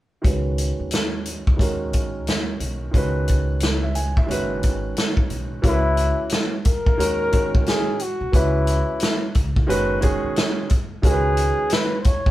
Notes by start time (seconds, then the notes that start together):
0.22 C#2 D#3 G#3 C#4, kick, closed hi-hat
0.26 F#4 B4
0.58 closed hi-hat
0.79 D#2
0.91 snare, closed hi-hat
1.26 closed hi-hat
1.47 C#2, kick
1.57 D#2 D#3 G#3 C#4, kick, closed hi-hat
1.61 F#4 A#4
1.93 A#1, kick, closed hi-hat
2.27 D#2, snare, closed hi-hat
2.60 B1, closed hi-hat
2.91 C#2 D#3 G#3 C#4 F#4, kick, closed hi-hat
2.97 B4
3.28 kick, closed hi-hat
3.60 snare, closed hi-hat
3.83 E5
3.95 G#5, closed hi-hat
4.17 E5, kick
4.26 F#1 D#3 G#3 C#4
4.30 F#4 B4, closed hi-hat
4.63 G#1, kick, closed hi-hat
4.97 snare, closed hi-hat
5.17 kick
5.30 B1, closed hi-hat
5.62 C#2 E3 G#3 C#4 E4 F#4 A#4, kick, closed hi-hat
5.71 B4
5.97 closed hi-hat
6.30 snare, closed hi-hat
6.65 D#2 A#4, kick, closed hi-hat
6.87 kick
6.97 D#2 D#3 G#3 C#4 F#4 A#4, closed hi-hat
7.32 D#3 G#3 C#4 F#4 A#4, kick, closed hi-hat
7.55 C#2, kick
7.66 G#4, snare, closed hi-hat
8.00 F#4, closed hi-hat
8.21 B1
8.32 C#2 E3 G#3 C#4 E4 F#4 B4, kick, closed hi-hat
8.67 closed hi-hat
9.00 snare, closed hi-hat
9.35 C#2, kick, closed hi-hat
9.56 kick
9.67 F#1 D#3 G#3 C#4 F#4 B4, closed hi-hat
10.01 D#3 G#3 C#4 F#4 G#4, kick, closed hi-hat
10.24 E1
10.36 snare, closed hi-hat
10.70 F#1, kick, closed hi-hat
11.02 C#2 D#3 G#3 C#4 F#4 G#4 A#4, kick, closed hi-hat
11.11 B4
11.37 closed hi-hat
11.70 B4, snare, closed hi-hat
12.01 C5, closed hi-hat
12.05 D#2 C#5, kick
12.26 kick